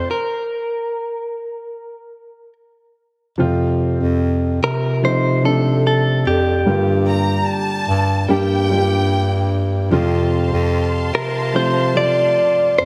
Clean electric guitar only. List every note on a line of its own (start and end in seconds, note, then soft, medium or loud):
0.00 0.10 C5 loud
0.11 2.53 A#4 medium
4.64 5.04 A#4 medium
5.05 5.45 C5 loud
5.45 5.86 A4 loud
5.87 6.28 A4 medium
6.27 8.66 G4 medium
11.15 11.56 A#4 medium
11.56 11.97 C5 loud
11.97 12.78 D5 loud
12.78 12.85 C5 loud